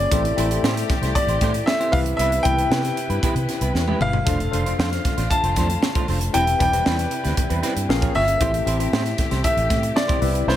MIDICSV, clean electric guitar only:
0, 0, Header, 1, 3, 480
1, 0, Start_track
1, 0, Tempo, 518135
1, 107, Time_signature, 4, 2, 24, 8
1, 9786, End_track
2, 0, Start_track
2, 0, Title_t, "Clean electric guitar"
2, 0, Program_c, 0, 27
2, 115, Note_on_c, 0, 57, 81
2, 116, Note_on_c, 0, 64, 74
2, 120, Note_on_c, 0, 72, 88
2, 122, Note_on_c, 0, 67, 86
2, 221, Note_off_c, 0, 72, 0
2, 222, Note_off_c, 0, 67, 0
2, 227, Note_off_c, 0, 64, 0
2, 234, Note_off_c, 0, 57, 0
2, 353, Note_on_c, 0, 57, 73
2, 357, Note_on_c, 0, 64, 73
2, 358, Note_on_c, 0, 67, 70
2, 365, Note_on_c, 0, 72, 78
2, 447, Note_off_c, 0, 57, 0
2, 449, Note_off_c, 0, 64, 0
2, 449, Note_off_c, 0, 67, 0
2, 453, Note_off_c, 0, 72, 0
2, 474, Note_on_c, 0, 72, 67
2, 475, Note_on_c, 0, 67, 60
2, 479, Note_on_c, 0, 64, 54
2, 483, Note_on_c, 0, 57, 54
2, 567, Note_off_c, 0, 72, 0
2, 568, Note_off_c, 0, 67, 0
2, 570, Note_off_c, 0, 64, 0
2, 572, Note_off_c, 0, 57, 0
2, 591, Note_on_c, 0, 57, 87
2, 595, Note_on_c, 0, 64, 83
2, 596, Note_on_c, 0, 67, 98
2, 602, Note_on_c, 0, 72, 107
2, 702, Note_off_c, 0, 72, 0
2, 706, Note_off_c, 0, 64, 0
2, 706, Note_off_c, 0, 67, 0
2, 713, Note_off_c, 0, 57, 0
2, 946, Note_on_c, 0, 72, 59
2, 952, Note_on_c, 0, 67, 59
2, 954, Note_on_c, 0, 64, 56
2, 959, Note_on_c, 0, 57, 53
2, 1044, Note_off_c, 0, 72, 0
2, 1047, Note_off_c, 0, 67, 0
2, 1048, Note_off_c, 0, 64, 0
2, 1050, Note_off_c, 0, 57, 0
2, 1195, Note_on_c, 0, 72, 68
2, 1198, Note_on_c, 0, 67, 57
2, 1199, Note_on_c, 0, 64, 57
2, 1205, Note_on_c, 0, 57, 55
2, 1288, Note_off_c, 0, 72, 0
2, 1290, Note_off_c, 0, 67, 0
2, 1291, Note_off_c, 0, 64, 0
2, 1293, Note_off_c, 0, 57, 0
2, 1313, Note_on_c, 0, 57, 96
2, 1315, Note_on_c, 0, 64, 109
2, 1318, Note_on_c, 0, 67, 97
2, 1323, Note_on_c, 0, 72, 100
2, 1422, Note_off_c, 0, 72, 0
2, 1425, Note_off_c, 0, 67, 0
2, 1431, Note_off_c, 0, 64, 0
2, 1434, Note_off_c, 0, 57, 0
2, 1668, Note_on_c, 0, 72, 89
2, 1671, Note_on_c, 0, 67, 86
2, 1673, Note_on_c, 0, 64, 87
2, 1680, Note_on_c, 0, 57, 69
2, 1786, Note_off_c, 0, 64, 0
2, 1787, Note_off_c, 0, 57, 0
2, 1788, Note_off_c, 0, 67, 0
2, 1790, Note_on_c, 0, 59, 65
2, 1792, Note_off_c, 0, 72, 0
2, 1797, Note_on_c, 0, 64, 66
2, 1800, Note_on_c, 0, 67, 71
2, 1800, Note_on_c, 0, 71, 71
2, 1887, Note_off_c, 0, 59, 0
2, 1890, Note_off_c, 0, 64, 0
2, 1891, Note_off_c, 0, 67, 0
2, 1891, Note_off_c, 0, 71, 0
2, 2037, Note_on_c, 0, 59, 86
2, 2038, Note_on_c, 0, 64, 89
2, 2046, Note_on_c, 0, 67, 92
2, 2048, Note_on_c, 0, 71, 97
2, 2148, Note_off_c, 0, 71, 0
2, 2151, Note_off_c, 0, 67, 0
2, 2155, Note_off_c, 0, 64, 0
2, 2157, Note_off_c, 0, 59, 0
2, 2273, Note_on_c, 0, 59, 65
2, 2273, Note_on_c, 0, 64, 64
2, 2277, Note_on_c, 0, 67, 75
2, 2280, Note_on_c, 0, 71, 72
2, 2368, Note_off_c, 0, 59, 0
2, 2368, Note_off_c, 0, 64, 0
2, 2370, Note_off_c, 0, 67, 0
2, 2372, Note_off_c, 0, 71, 0
2, 2392, Note_on_c, 0, 71, 60
2, 2400, Note_on_c, 0, 67, 58
2, 2403, Note_on_c, 0, 59, 52
2, 2403, Note_on_c, 0, 64, 56
2, 2488, Note_off_c, 0, 71, 0
2, 2491, Note_off_c, 0, 67, 0
2, 2493, Note_off_c, 0, 59, 0
2, 2493, Note_off_c, 0, 64, 0
2, 2509, Note_on_c, 0, 59, 91
2, 2512, Note_on_c, 0, 64, 93
2, 2517, Note_on_c, 0, 67, 98
2, 2521, Note_on_c, 0, 71, 104
2, 2625, Note_off_c, 0, 71, 0
2, 2627, Note_off_c, 0, 67, 0
2, 2629, Note_off_c, 0, 64, 0
2, 2633, Note_off_c, 0, 59, 0
2, 2869, Note_on_c, 0, 71, 71
2, 2870, Note_on_c, 0, 67, 56
2, 2873, Note_on_c, 0, 64, 52
2, 2876, Note_on_c, 0, 59, 57
2, 2966, Note_off_c, 0, 71, 0
2, 2967, Note_off_c, 0, 67, 0
2, 2968, Note_off_c, 0, 64, 0
2, 2969, Note_off_c, 0, 59, 0
2, 2995, Note_on_c, 0, 59, 85
2, 2999, Note_on_c, 0, 64, 88
2, 3003, Note_on_c, 0, 67, 99
2, 3003, Note_on_c, 0, 71, 101
2, 3107, Note_off_c, 0, 71, 0
2, 3111, Note_off_c, 0, 67, 0
2, 3112, Note_off_c, 0, 64, 0
2, 3116, Note_off_c, 0, 59, 0
2, 3352, Note_on_c, 0, 71, 65
2, 3353, Note_on_c, 0, 67, 61
2, 3357, Note_on_c, 0, 64, 55
2, 3362, Note_on_c, 0, 59, 56
2, 3448, Note_off_c, 0, 67, 0
2, 3448, Note_off_c, 0, 71, 0
2, 3451, Note_off_c, 0, 64, 0
2, 3453, Note_off_c, 0, 59, 0
2, 3591, Note_on_c, 0, 67, 90
2, 3592, Note_on_c, 0, 71, 87
2, 3600, Note_on_c, 0, 59, 73
2, 3600, Note_on_c, 0, 64, 82
2, 3705, Note_off_c, 0, 59, 0
2, 3708, Note_off_c, 0, 64, 0
2, 3712, Note_off_c, 0, 67, 0
2, 3715, Note_off_c, 0, 71, 0
2, 3716, Note_on_c, 0, 59, 53
2, 3719, Note_on_c, 0, 64, 56
2, 3724, Note_on_c, 0, 67, 62
2, 3727, Note_on_c, 0, 71, 68
2, 3810, Note_off_c, 0, 59, 0
2, 3812, Note_off_c, 0, 64, 0
2, 3814, Note_off_c, 0, 67, 0
2, 3816, Note_off_c, 0, 71, 0
2, 3961, Note_on_c, 0, 57, 79
2, 3962, Note_on_c, 0, 62, 85
2, 3964, Note_on_c, 0, 65, 88
2, 3967, Note_on_c, 0, 72, 87
2, 4078, Note_off_c, 0, 72, 0
2, 4079, Note_off_c, 0, 57, 0
2, 4080, Note_off_c, 0, 62, 0
2, 4081, Note_off_c, 0, 65, 0
2, 4201, Note_on_c, 0, 57, 69
2, 4202, Note_on_c, 0, 62, 74
2, 4204, Note_on_c, 0, 65, 78
2, 4205, Note_on_c, 0, 72, 76
2, 4293, Note_off_c, 0, 57, 0
2, 4293, Note_off_c, 0, 62, 0
2, 4294, Note_off_c, 0, 65, 0
2, 4295, Note_off_c, 0, 72, 0
2, 4314, Note_on_c, 0, 72, 72
2, 4320, Note_on_c, 0, 65, 60
2, 4323, Note_on_c, 0, 62, 64
2, 4326, Note_on_c, 0, 57, 56
2, 4409, Note_off_c, 0, 72, 0
2, 4412, Note_off_c, 0, 65, 0
2, 4414, Note_off_c, 0, 62, 0
2, 4415, Note_off_c, 0, 57, 0
2, 4431, Note_on_c, 0, 57, 77
2, 4435, Note_on_c, 0, 62, 83
2, 4439, Note_on_c, 0, 65, 85
2, 4443, Note_on_c, 0, 72, 96
2, 4546, Note_off_c, 0, 72, 0
2, 4547, Note_off_c, 0, 65, 0
2, 4551, Note_off_c, 0, 62, 0
2, 4555, Note_off_c, 0, 57, 0
2, 4792, Note_on_c, 0, 72, 70
2, 4800, Note_on_c, 0, 62, 68
2, 4800, Note_on_c, 0, 65, 64
2, 4802, Note_on_c, 0, 57, 52
2, 4888, Note_off_c, 0, 72, 0
2, 4892, Note_off_c, 0, 62, 0
2, 4892, Note_off_c, 0, 65, 0
2, 4893, Note_off_c, 0, 57, 0
2, 5043, Note_on_c, 0, 72, 71
2, 5046, Note_on_c, 0, 62, 55
2, 5047, Note_on_c, 0, 65, 67
2, 5054, Note_on_c, 0, 57, 49
2, 5134, Note_off_c, 0, 72, 0
2, 5135, Note_off_c, 0, 62, 0
2, 5136, Note_off_c, 0, 65, 0
2, 5139, Note_off_c, 0, 57, 0
2, 5162, Note_on_c, 0, 57, 78
2, 5166, Note_on_c, 0, 62, 90
2, 5167, Note_on_c, 0, 65, 93
2, 5170, Note_on_c, 0, 72, 97
2, 5270, Note_off_c, 0, 72, 0
2, 5274, Note_off_c, 0, 65, 0
2, 5277, Note_off_c, 0, 62, 0
2, 5280, Note_off_c, 0, 57, 0
2, 5517, Note_on_c, 0, 72, 85
2, 5522, Note_on_c, 0, 62, 74
2, 5522, Note_on_c, 0, 65, 90
2, 5527, Note_on_c, 0, 57, 73
2, 5628, Note_off_c, 0, 57, 0
2, 5632, Note_off_c, 0, 62, 0
2, 5633, Note_off_c, 0, 65, 0
2, 5638, Note_off_c, 0, 72, 0
2, 5639, Note_on_c, 0, 57, 63
2, 5643, Note_on_c, 0, 62, 55
2, 5644, Note_on_c, 0, 65, 63
2, 5648, Note_on_c, 0, 72, 65
2, 5732, Note_off_c, 0, 57, 0
2, 5734, Note_off_c, 0, 62, 0
2, 5734, Note_off_c, 0, 65, 0
2, 5736, Note_off_c, 0, 72, 0
2, 5869, Note_on_c, 0, 55, 80
2, 5873, Note_on_c, 0, 60, 89
2, 5879, Note_on_c, 0, 64, 90
2, 5882, Note_on_c, 0, 71, 89
2, 5987, Note_off_c, 0, 71, 0
2, 5989, Note_off_c, 0, 64, 0
2, 5990, Note_off_c, 0, 60, 0
2, 5994, Note_off_c, 0, 55, 0
2, 6111, Note_on_c, 0, 55, 70
2, 6120, Note_on_c, 0, 60, 67
2, 6120, Note_on_c, 0, 64, 64
2, 6123, Note_on_c, 0, 71, 74
2, 6208, Note_off_c, 0, 55, 0
2, 6212, Note_off_c, 0, 60, 0
2, 6212, Note_off_c, 0, 64, 0
2, 6214, Note_off_c, 0, 71, 0
2, 6236, Note_on_c, 0, 71, 61
2, 6239, Note_on_c, 0, 64, 62
2, 6241, Note_on_c, 0, 60, 55
2, 6245, Note_on_c, 0, 55, 57
2, 6330, Note_off_c, 0, 71, 0
2, 6332, Note_off_c, 0, 60, 0
2, 6332, Note_off_c, 0, 64, 0
2, 6335, Note_off_c, 0, 55, 0
2, 6357, Note_on_c, 0, 55, 96
2, 6362, Note_on_c, 0, 60, 97
2, 6367, Note_on_c, 0, 64, 102
2, 6367, Note_on_c, 0, 71, 94
2, 6464, Note_off_c, 0, 64, 0
2, 6464, Note_off_c, 0, 71, 0
2, 6467, Note_off_c, 0, 60, 0
2, 6477, Note_off_c, 0, 55, 0
2, 6704, Note_on_c, 0, 71, 81
2, 6709, Note_on_c, 0, 64, 65
2, 6713, Note_on_c, 0, 60, 59
2, 6715, Note_on_c, 0, 55, 61
2, 6804, Note_off_c, 0, 71, 0
2, 6807, Note_off_c, 0, 64, 0
2, 6808, Note_off_c, 0, 60, 0
2, 6810, Note_off_c, 0, 55, 0
2, 6944, Note_on_c, 0, 71, 78
2, 6950, Note_on_c, 0, 60, 71
2, 6950, Note_on_c, 0, 64, 65
2, 6954, Note_on_c, 0, 55, 60
2, 7044, Note_off_c, 0, 71, 0
2, 7047, Note_off_c, 0, 60, 0
2, 7047, Note_off_c, 0, 64, 0
2, 7049, Note_off_c, 0, 55, 0
2, 7063, Note_on_c, 0, 55, 94
2, 7066, Note_on_c, 0, 60, 92
2, 7067, Note_on_c, 0, 64, 100
2, 7070, Note_on_c, 0, 71, 101
2, 7176, Note_off_c, 0, 71, 0
2, 7177, Note_off_c, 0, 64, 0
2, 7182, Note_off_c, 0, 60, 0
2, 7191, Note_off_c, 0, 55, 0
2, 7424, Note_on_c, 0, 73, 86
2, 7427, Note_on_c, 0, 68, 81
2, 7432, Note_on_c, 0, 58, 70
2, 7432, Note_on_c, 0, 65, 68
2, 7538, Note_off_c, 0, 58, 0
2, 7542, Note_off_c, 0, 65, 0
2, 7545, Note_off_c, 0, 68, 0
2, 7547, Note_off_c, 0, 73, 0
2, 7549, Note_on_c, 0, 58, 62
2, 7554, Note_on_c, 0, 65, 63
2, 7556, Note_on_c, 0, 68, 65
2, 7558, Note_on_c, 0, 73, 73
2, 7647, Note_off_c, 0, 58, 0
2, 7649, Note_off_c, 0, 65, 0
2, 7650, Note_off_c, 0, 68, 0
2, 7651, Note_off_c, 0, 73, 0
2, 7791, Note_on_c, 0, 60, 83
2, 7793, Note_on_c, 0, 64, 92
2, 7797, Note_on_c, 0, 67, 93
2, 7797, Note_on_c, 0, 72, 98
2, 7897, Note_off_c, 0, 72, 0
2, 7902, Note_off_c, 0, 67, 0
2, 7905, Note_off_c, 0, 64, 0
2, 7915, Note_off_c, 0, 60, 0
2, 8029, Note_on_c, 0, 60, 72
2, 8033, Note_on_c, 0, 64, 75
2, 8035, Note_on_c, 0, 67, 76
2, 8041, Note_on_c, 0, 72, 72
2, 8127, Note_off_c, 0, 60, 0
2, 8129, Note_off_c, 0, 64, 0
2, 8129, Note_off_c, 0, 67, 0
2, 8133, Note_off_c, 0, 72, 0
2, 8150, Note_on_c, 0, 72, 69
2, 8151, Note_on_c, 0, 67, 69
2, 8155, Note_on_c, 0, 64, 62
2, 8159, Note_on_c, 0, 60, 53
2, 8247, Note_off_c, 0, 67, 0
2, 8247, Note_off_c, 0, 72, 0
2, 8249, Note_off_c, 0, 64, 0
2, 8252, Note_off_c, 0, 60, 0
2, 8273, Note_on_c, 0, 60, 96
2, 8277, Note_on_c, 0, 67, 109
2, 8278, Note_on_c, 0, 64, 98
2, 8282, Note_on_c, 0, 72, 116
2, 8378, Note_off_c, 0, 72, 0
2, 8380, Note_off_c, 0, 67, 0
2, 8382, Note_off_c, 0, 64, 0
2, 8396, Note_off_c, 0, 60, 0
2, 8626, Note_on_c, 0, 67, 69
2, 8626, Note_on_c, 0, 72, 73
2, 8633, Note_on_c, 0, 64, 66
2, 8636, Note_on_c, 0, 60, 55
2, 8725, Note_off_c, 0, 67, 0
2, 8725, Note_off_c, 0, 72, 0
2, 8729, Note_off_c, 0, 64, 0
2, 8730, Note_off_c, 0, 60, 0
2, 9336, Note_on_c, 0, 72, 97
2, 9342, Note_on_c, 0, 67, 94
2, 9344, Note_on_c, 0, 60, 74
2, 9345, Note_on_c, 0, 64, 89
2, 9459, Note_off_c, 0, 60, 0
2, 9459, Note_off_c, 0, 64, 0
2, 9460, Note_off_c, 0, 67, 0
2, 9463, Note_on_c, 0, 59, 55
2, 9467, Note_off_c, 0, 72, 0
2, 9470, Note_on_c, 0, 64, 58
2, 9471, Note_on_c, 0, 67, 66
2, 9472, Note_on_c, 0, 71, 64
2, 9563, Note_off_c, 0, 59, 0
2, 9567, Note_off_c, 0, 64, 0
2, 9567, Note_off_c, 0, 67, 0
2, 9568, Note_off_c, 0, 71, 0
2, 9708, Note_on_c, 0, 59, 91
2, 9714, Note_on_c, 0, 64, 88
2, 9716, Note_on_c, 0, 67, 100
2, 9716, Note_on_c, 0, 71, 94
2, 9786, Note_off_c, 0, 59, 0
2, 9786, Note_off_c, 0, 64, 0
2, 9786, Note_off_c, 0, 67, 0
2, 9786, Note_off_c, 0, 71, 0
2, 9786, End_track
3, 0, Start_track
3, 0, Title_t, "Muted clean electric guitar strokes"
3, 232, Note_on_c, 9, 29, 61
3, 325, Note_off_c, 9, 29, 0
3, 713, Note_on_c, 9, 29, 49
3, 806, Note_off_c, 9, 29, 0
3, 832, Note_on_c, 9, 29, 41
3, 925, Note_off_c, 9, 29, 0
3, 1433, Note_on_c, 9, 29, 58
3, 1525, Note_off_c, 9, 29, 0
3, 1552, Note_on_c, 9, 29, 41
3, 1644, Note_off_c, 9, 29, 0
3, 2160, Note_on_c, 9, 29, 47
3, 2252, Note_off_c, 9, 29, 0
3, 2637, Note_on_c, 9, 29, 45
3, 2729, Note_off_c, 9, 29, 0
3, 2750, Note_on_c, 9, 29, 44
3, 2843, Note_off_c, 9, 29, 0
3, 3118, Note_on_c, 9, 29, 45
3, 3210, Note_off_c, 9, 29, 0
3, 3235, Note_on_c, 9, 29, 46
3, 3327, Note_off_c, 9, 29, 0
3, 3468, Note_on_c, 9, 29, 34
3, 3560, Note_off_c, 9, 29, 0
3, 4089, Note_on_c, 9, 29, 47
3, 4182, Note_off_c, 9, 29, 0
3, 4558, Note_on_c, 9, 29, 50
3, 4650, Note_off_c, 9, 29, 0
3, 4672, Note_on_c, 9, 29, 43
3, 4764, Note_off_c, 9, 29, 0
3, 5281, Note_on_c, 9, 29, 49
3, 5374, Note_off_c, 9, 29, 0
3, 5397, Note_on_c, 9, 29, 46
3, 5490, Note_off_c, 9, 29, 0
3, 5767, Note_on_c, 9, 29, 45
3, 5860, Note_off_c, 9, 29, 0
3, 5998, Note_on_c, 9, 29, 58
3, 6091, Note_off_c, 9, 29, 0
3, 6475, Note_on_c, 9, 29, 52
3, 6567, Note_off_c, 9, 29, 0
3, 6596, Note_on_c, 9, 29, 36
3, 6688, Note_off_c, 9, 29, 0
3, 7187, Note_on_c, 9, 29, 48
3, 7279, Note_off_c, 9, 29, 0
3, 7310, Note_on_c, 9, 29, 37
3, 7403, Note_off_c, 9, 29, 0
3, 7674, Note_on_c, 9, 29, 48
3, 7767, Note_off_c, 9, 29, 0
3, 7908, Note_on_c, 9, 29, 51
3, 8001, Note_off_c, 9, 29, 0
3, 8389, Note_on_c, 9, 29, 46
3, 8481, Note_off_c, 9, 29, 0
3, 8505, Note_on_c, 9, 29, 39
3, 8597, Note_off_c, 9, 29, 0
3, 8871, Note_on_c, 9, 29, 59
3, 8963, Note_off_c, 9, 29, 0
3, 9105, Note_on_c, 9, 29, 54
3, 9198, Note_off_c, 9, 29, 0
3, 9224, Note_on_c, 9, 29, 42
3, 9317, Note_off_c, 9, 29, 0
3, 9584, Note_on_c, 9, 29, 46
3, 9676, Note_off_c, 9, 29, 0
3, 9786, End_track
0, 0, End_of_file